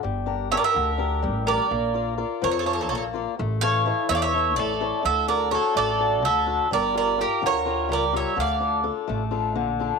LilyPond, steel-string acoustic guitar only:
\new Staff \with { instrumentName = "Steel-string acoustic guitar" } { \time 7/8 \tempo 4 = 126 g8 <d' g' bes'>8 <d' g' bes'>8 d8 <d' g' bes'>8 g8 <d' g' bes'>8 | bes8 <f' bes' d''>8 <f' bes' d''>8 f8 <f' bes' d''>8 bes8 <f' bes' d''>8 | a8 <e a' cis''>8 <e' a' cis''>8 e8 <e' a' cis''>8 a8 <e' a' cis''>8 | d8 <d' fis' a'>8 <d' fis' a'>8 a8 <d' fis' a'>8 d8 <d' fis' a'>8 |
g8 <f' g' bes'>8 <f' g' bes'>8 d8 <f' g' bes'>8 g8 <f' g' bes'>8 | d8 <d' f' a'>8 <d' f' a'>8 a8 <d' f' a'>8 d8 <d' f' a'>8 | }